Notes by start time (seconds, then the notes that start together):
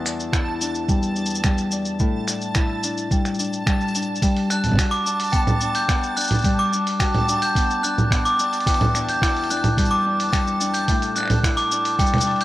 Already playing: E2 G3 B3 F#4 A5
0.04 D4, finger snap, shaker
0.20 shaker
0.32 E4, finger snap, kick, shaker
0.61 D4, shaker
0.75 shaker
0.89 G3, kick, shaker
1.03 shaker
1.16 D4, shaker
1.26 shaker
1.30 shaker
1.35 shaker
1.44 G3, finger snap, kick, shaker
1.58 shaker
1.71 D4, shaker
1.85 shaker
1.99 A2, kick, shaker
2.28 D4, finger snap, shaker
2.41 shaker
2.55 E4, finger snap, kick, shaker
2.83 D4, shaker
2.97 shaker
3.11 G3, kick, shaker
3.25 finger snap, shaker
3.34 shaker
3.39 D4, shaker
3.44 shaker
3.53 shaker
3.67 G3, finger snap, kick, shaker
3.81 shaker
3.88 shaker
3.95 D4, shaker
4.02 shaker
4.15 shaker
4.22 G3, kick, open hi-hat, shaker
4.37 open hi-hat
4.50 D4 F#6, finger snap, shaker
4.64 open hi-hat, low conga, shaker
4.67 low conga
4.69 low conga
4.71 low conga
4.73 low conga
4.75 F#4, finger snap, kick, open hi-hat, low conga, shaker
4.91 D6, open hi-hat
5.06 D4, shaker
5.20 open hi-hat, shaker
5.23 shaker
5.26 shaker
5.30 G5, open hi-hat, shaker
5.33 B3, kick, shaker
5.47 low conga, shaker
5.61 D4, shaker
5.75 G6, open hi-hat, shaker
5.89 B3, finger snap, kick, open hi-hat, shaker
6.03 shaker
6.17 D4 F#6, shaker
6.20 shaker
6.24 shaker
6.27 open hi-hat, low conga, shaker
6.31 shaker
6.34 shaker
6.38 shaker
6.42 G3, kick, open hi-hat, shaker
6.45 shaker
6.59 D6
6.72 D4, shaker
6.87 open hi-hat, shaker
7.00 F#4 G5, finger snap, kick, open hi-hat, shaker
7.14 open hi-hat, low conga
7.28 D4, shaker
7.42 G6, open hi-hat, shaker
7.55 B3, kick, open hi-hat, shaker
7.70 shaker
7.83 D4 F#6, shaker
7.98 low conga, shaker
8.11 B3, finger snap, kick, open hi-hat, shaker
8.25 D6, shaker
8.39 D4, shaker
8.53 open hi-hat, shaker
8.60 open hi-hat
8.66 E2 G5, kick, open hi-hat, shaker
8.74 open hi-hat
8.81 open hi-hat, low conga
8.94 D4, finger snap, shaker
9.09 G6, open hi-hat, shaker
9.22 E4, finger snap, kick, open hi-hat, shaker
9.37 open hi-hat
9.44 open hi-hat
9.50 D4 F#6, open hi-hat, shaker
9.57 open hi-hat
9.64 open hi-hat, low conga, shaker
9.77 G3, kick, open hi-hat, shaker
9.85 shaker
9.91 D6
10.06 D4
10.20 open hi-hat, shaker
10.33 G3 G5, finger snap, kick, open hi-hat, shaker
10.47 shaker
10.60 D4, shaker
10.74 G6, open hi-hat, shaker
10.88 A2, kick, open hi-hat, shaker
11.02 open hi-hat, shaker
11.16 D4 F#6, finger snap, shaker
11.18 finger snap
11.20 finger snap
11.23 finger snap
11.25 finger snap
11.28 finger snap, open hi-hat, low conga, shaker
11.43 E4, finger snap, kick, open hi-hat, shaker
11.57 D6, open hi-hat, shaker
11.71 D4, shaker
11.85 open hi-hat, shaker
11.99 G3 G5, kick, open hi-hat, shaker
12.06 shaker
12.14 finger snap, open hi-hat, low conga
12.18 open hi-hat, shaker
12.22 open hi-hat
12.27 D4, open hi-hat
12.31 open hi-hat
12.36 open hi-hat
12.41 G6, open hi-hat